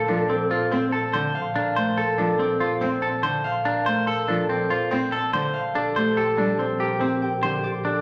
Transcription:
Already playing: double bass A#1, clean electric guitar A4, harp A4 A#4 C5 D5 F5 A5
0.08 cello F3, clean electric guitar D4, alto flute A4
0.29 clean electric guitar C4, alto flute A4, harp D5
0.50 clean electric guitar F4, alto flute A4, harp C5
0.71 clean electric guitar C4, cello C4, alto flute A4
0.92 clean electric guitar A4, alto flute A4, harp A5
1.13 cello D3, alto flute A4, clean electric guitar C5
1.35 harp F5
1.56 clean electric guitar D4, harp A#4
1.76 cello A3, clean electric guitar C5
1.97 clean electric guitar A4, harp A4
2.18 cello F3, clean electric guitar D4
2.39 clean electric guitar C4, harp D5
2.60 clean electric guitar F4, harp C5
2.81 clean electric guitar C4, cello C4
3.02 clean electric guitar A4, harp A5
3.23 cello D3, clean electric guitar C5
3.44 harp F5
3.65 clean electric guitar D4, harp A#4
3.86 cello A3, clean electric guitar C5
4.07 harp A4, clean electric guitar A4
4.28 cello F3, clean electric guitar D4
4.49 clean electric guitar C4, harp D5
4.70 clean electric guitar F4, harp C5
4.91 cello C4, clean electric guitar C4
5.12 clean electric guitar A4, harp A5
5.33 cello D3, clean electric guitar C5
5.54 harp F5
5.75 double bass A#1, clean electric guitar D4, alto flute G4, harp A4
5.96 cello A3, alto flute G4, clean electric guitar C5
6.17 alto flute G4, harp G4, clean electric guitar A4
6.37 cello G3, clean electric guitar D4, alto flute G4
6.58 clean electric guitar C4, alto flute G4, harp C5
6.80 alto flute G4, clean electric guitar G4, harp A#4
7.00 cello C4, clean electric guitar C4, alto flute G4
7.22 alto flute G4, harp G5
7.43 cello D3, alto flute G4, clean electric guitar C5
7.64 alto flute G4, harp D5
7.84 clean electric guitar D4, alto flute G4, harp A4

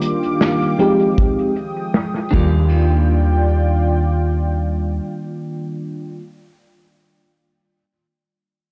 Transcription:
Already playing: fm electric piano D#3 G3 A#3 D4 F4, analog synth pad D#3 G4 F5 D6
0.02 closed hi-hat
0.23 closed hi-hat
0.41 snare, closed hi-hat
0.62 closed hi-hat
0.78 fm electric piano F3 G#3 C4 D#4 G4, closed hi-hat
1.00 closed hi-hat
1.17 analog synth pad F3 G#3 G5 D#6, kick, closed hi-hat
1.39 closed hi-hat
1.56 closed hi-hat
1.77 closed hi-hat
1.94 snare, closed hi-hat
2.14 snare, closed hi-hat
2.31 slap bass D#2, fm electric piano D#3 G3 A#3 D4, clean electric guitar D4 F4 G4, analog synth pad F4 D5 G5, kick, crash
2.35 fm electric piano F4

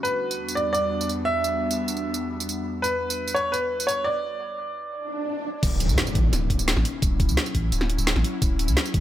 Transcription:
Already playing: analog synth pad E2 G3 B3 D4 F#4
0.03 grand piano B4, tambourine
0.31 tambourine
0.48 tambourine
0.55 grand piano D5, tambourine
0.73 grand piano D5, tambourine
1.01 tambourine
1.09 tambourine
1.25 grand piano E5
1.44 tambourine
1.71 tambourine
1.88 tambourine
1.97 tambourine
2.14 tambourine
2.40 tambourine
2.49 tambourine
2.82 grand piano B4, tambourine
3.10 tambourine
3.28 tambourine
3.35 grand piano C#5, tambourine
3.52 grand piano B4, tambourine
3.80 tambourine
3.87 grand piano C#5, tambourine
4.04 grand piano D5
4.93 swell
5.63 sub bass D1, analog synth pad F#3 C#4 E4, kick, closed hi-hat, crash, tambourine, impact
5.80 closed hi-hat, tambourine
5.89 sub bass D2, tambourine
5.98 snare, closed hi-hat
6.07 tambourine
6.15 sub bass A1, kick, closed hi-hat
6.33 sub bass D1, snare, closed hi-hat, tambourine
6.50 kick, closed hi-hat
6.59 sub bass D1, tambourine
6.68 snare, closed hi-hat, tambourine
6.76 sub bass A1, snare
6.85 closed hi-hat
7.02 sub bass D1, kick, closed hi-hat, tambourine
7.20 kick, closed hi-hat, tambourine
7.29 sub bass D2, tambourine
7.37 snare, closed hi-hat
7.46 tambourine
7.55 sub bass A1, kick, closed hi-hat
7.72 sub bass D1, closed hi-hat, tambourine
7.81 snare
7.90 closed hi-hat
7.98 sub bass D1, tambourine
8.07 snare, closed hi-hat, tambourine
8.16 sub bass A1, snare
8.24 closed hi-hat
8.42 sub bass D1, kick, closed hi-hat, tambourine
8.59 closed hi-hat, tambourine
8.68 sub bass D2, tambourine
8.77 snare, closed hi-hat
8.86 tambourine
8.94 sub bass A1, kick, closed hi-hat

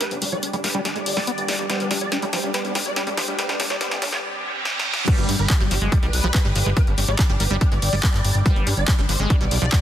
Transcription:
Already playing: synth drone G3 G4, ambient pad D4 G4 G5, riser
0.01 wobble bass B3, digital synth lead B4, snare, closed hi-hat
0.11 analog synth bass G1, wobble bass B3, digital synth lead D4, closed hi-hat
0.22 analog synth bass G1, acid bass G3, digital synth lead D4, open hi-hat
0.32 analog synth bass G#1, acid bass F3, digital synth lead D5, closed hi-hat
0.43 digital synth lead D4, closed hi-hat
0.53 analog synth bass G1, acid bass G3, digital synth lead D4, closed hi-hat
0.64 analog synth bass G1, acid bass G3, digital synth lead B4, snare, open hi-hat
0.74 analog synth bass G1, acid bass G3, digital synth lead D4, closed hi-hat
0.85 acid bass G3, digital synth lead D4, snare, closed hi-hat
0.96 analog synth bass G1, acid bass G#3, digital synth lead D5, closed hi-hat
1.06 analog synth bass G1, open hi-hat
1.17 analog synth bass G1, acid bass G3, snare, open hi-hat
1.27 acid bass B3, closed hi-hat
1.38 analog synth bass G1, closed hi-hat
1.48 analog synth bass G1, snare, open hi-hat
1.59 analog synth bass G1, closed hi-hat
1.70 acid bass G3, wobble bass B3, digital synth lead C5, snare, closed hi-hat
1.80 analog synth bass G1, digital synth lead D4, closed hi-hat
1.91 analog synth bass G2, acid bass G3, digital synth lead D4, snare, open hi-hat
2.01 analog synth bass G1, digital synth lead D5, closed hi-hat
2.12 acid bass G3, digital synth lead D4, snare, closed hi-hat
2.22 analog synth bass G1, acid bass G3, digital synth lead D4, closed hi-hat
2.33 analog synth bass G1, acid bass F3, digital synth lead C5, snare, open hi-hat
2.44 analog synth bass G1, acid bass G3, digital synth lead D4, closed hi-hat
2.54 acid bass G3, wobble bass B3, digital synth lead C5, snare, closed hi-hat
2.65 analog synth bass B1, digital synth lead D4, closed hi-hat
2.75 analog synth bass B1, acid bass G3, digital synth lead D4, snare, open hi-hat
2.86 analog synth bass B1, digital synth lead D5, closed hi-hat
2.96 acid bass G3, digital synth lead D4, snare, closed hi-hat
3.07 analog synth bass G1, acid bass G3, digital synth lead D4, closed hi-hat
3.17 analog synth bass G1, acid bass F3, digital synth lead C5, snare, open hi-hat
3.28 analog synth bass G1, acid bass G3, digital synth lead D4
3.39 acid bass G3, wobble bass B3, digital synth lead C5, snare, closed hi-hat
3.49 analog synth bass G1, digital synth lead D4, snare, closed hi-hat
3.60 analog synth bass G1, acid bass G3, digital synth lead D4, snare, open hi-hat
3.70 analog synth bass G#1, digital synth lead D5, snare, closed hi-hat
3.81 acid bass G3, wobble bass B3, digital synth lead C5, snare, closed hi-hat
3.91 analog synth bass G1, digital synth lead D4, snare, closed hi-hat
4.02 analog synth bass G1, acid bass G3, digital synth lead D4, snare, open hi-hat
4.13 analog synth bass G1, digital synth lead D5, snare
4.23 reverse cymbal
4.65 snare
4.79 snare
4.94 snare
5.08 synth drone G3 G4, acid bass G3, wobble bass B3, digital synth lead G4, kick, closed hi-hat, crash
5.18 analog synth bass G1, digital synth lead G3, closed hi-hat
5.29 analog synth bass G2, digital synth lead G3, acid bass G#3, open hi-hat
5.39 analog synth bass G1, digital synth lead B4, closed hi-hat
5.50 acid bass G3, digital synth lead G3, kick, clap, closed hi-hat
5.60 analog synth bass G1, acid bass G3, digital synth lead G3, closed hi-hat
5.71 analog synth bass G1, acid bass F3, digital synth lead G4, open hi-hat
5.82 analog synth bass G1, digital synth lead G3, acid bass G#3, closed hi-hat
5.92 acid bass G3, digital synth lead G3, kick, closed hi-hat
6.03 analog synth bass B1, acid bass G3, digital synth lead B4, closed hi-hat
6.13 analog synth bass B1, open hi-hat
6.24 analog synth bass B1, acid bass F3, wobble bass G3, closed hi-hat
6.34 acid bass B3, kick, clap, closed hi-hat
6.45 analog synth bass G1, acid bass G3, closed hi-hat
6.56 analog synth bass G1, acid bass F3, open hi-hat
6.66 analog synth bass G1, acid bass G#3, closed hi-hat
6.77 wobble bass B3, digital synth lead B4, kick, closed hi-hat
6.87 analog synth bass G1, wobble bass B3, digital synth lead D4, closed hi-hat
6.98 analog synth bass G1, acid bass G3, digital synth lead D4, open hi-hat
7.08 analog synth bass G#1, acid bass F3, digital synth lead D5, closed hi-hat
7.19 digital synth lead D4, kick, clap, closed hi-hat
7.29 analog synth bass G1, acid bass G3, digital synth lead D4, closed hi-hat
7.40 analog synth bass G1, acid bass G3, digital synth lead B4, open hi-hat
7.51 analog synth bass G1, acid bass G3, digital synth lead D4
7.61 acid bass G3, digital synth lead D4, kick, closed hi-hat
7.72 analog synth bass G1, acid bass G#3, digital synth lead D5, closed hi-hat
7.82 analog synth bass G1, open hi-hat
7.93 analog synth bass G1, acid bass G3, open hi-hat
8.03 acid bass B3, kick, clap, closed hi-hat
8.14 analog synth bass G1, clap, closed hi-hat
8.25 analog synth bass G1, open hi-hat
8.35 analog synth bass G1, closed hi-hat
8.46 acid bass G3, wobble bass B3, synth drone B4, digital synth lead C5, kick, closed hi-hat
8.56 analog synth bass G1, digital synth lead D4, closed hi-hat
8.67 analog synth bass G2, acid bass G#3, digital synth lead D4, open hi-hat
8.77 analog synth bass G1, digital synth lead D5, closed hi-hat
8.88 acid bass G3, digital synth lead D4, kick, clap, closed hi-hat
8.98 analog synth bass G1, acid bass G3, digital synth lead D4, closed hi-hat
9.09 analog synth bass G1, acid bass F3, digital synth lead C5, open hi-hat
9.20 analog synth bass G1, acid bass G#3, digital synth lead D4, closed hi-hat
9.30 acid bass G3, digital synth lead D4, kick, closed hi-hat
9.41 analog synth bass B1, acid bass G3, digital synth lead D5, closed hi-hat
9.51 analog synth bass B1, wobble bass G3, open hi-hat
9.62 analog synth bass B1, acid bass F3, wobble bass G3
9.72 acid bass B3, kick, clap, closed hi-hat

